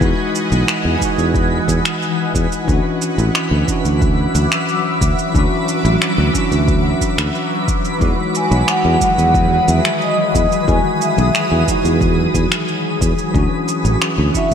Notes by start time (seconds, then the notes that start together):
Already playing: E3 D#4 F#4 B4 D#5 F#5 G#5 B5
0.00 E2 G#3 D#4, kick, shaker
0.05 F#4
0.35 shaker
0.52 B1, shaker
0.68 finger snap, shaker
0.85 E2
0.98 E3 G#3, kick, shaker
1.03 D#4 F#4
1.18 E2, shaker
1.35 kick, shaker
1.68 E2, kick, shaker
1.85 finger snap, shaker
2.02 shaker
2.35 E2, kick, shaker
2.52 shaker
2.65 D2 E3 F#3 C#4, kick, shaker
2.69 D4 F#4 E5 D6
3.02 shaker
3.18 A1, shaker
3.35 finger snap, shaker
3.51 D2
3.65 E3 C#4, kick, shaker
3.70 D4 F#4
3.85 D2, shaker
4.01 kick, shaker
4.35 D2, shaker
4.52 finger snap, shaker
4.69 shaker
5.01 D2, kick, shaker
5.19 shaker
5.32 D2 E3 C#4, kick, shaker
5.36 D4 F#4
5.68 shaker
5.85 A1, shaker
6.02 finger snap, shaker
6.18 D2
6.31 E3 C#4, kick, shaker
6.36 D4 F#4
6.52 D2, shaker
6.68 kick, shaker
7.01 kick, shaker
7.18 D2, finger snap, shaker
7.35 shaker
7.68 kick, shaker
7.85 shaker
7.98 E2 E3 G#3 G#4 D#6, kick, shaker
8.02 D#4 F#4
8.35 G#5, shaker
8.51 B1, shaker
8.68 F#5, finger snap, shaker
8.85 E2
8.98 E3 G#3, kick, shaker
9.02 D#3 F#4 F#5
9.18 E2, shaker
9.35 kick, shaker
9.68 E2 E5, shaker
9.85 finger snap, shaker
10.02 D#5, shaker
10.35 E2, kick, shaker
10.52 shaker
10.65 E2 E3 G#3, kick, shaker
10.69 D#3 F#4 G#5
11.01 E5, shaker
11.18 B1, shaker
11.35 finger snap, shaker
11.52 E2
11.65 E3 G#3, kick, shaker
11.69 D#4 F#4
11.85 E2, shaker
12.01 kick, shaker
12.34 E2, kick, shaker
12.52 finger snap, shaker
12.68 shaker
13.01 E2, kick, shaker
13.19 shaker
13.31 D2 E3 C#4 E4 F#5 C#6, kick, shaker
13.36 D4 F#4
13.68 shaker
13.85 A1, shaker
14.02 finger snap, shaker
14.18 D2
14.32 E3 E4, kick, shaker
14.36 D4 F#4 E5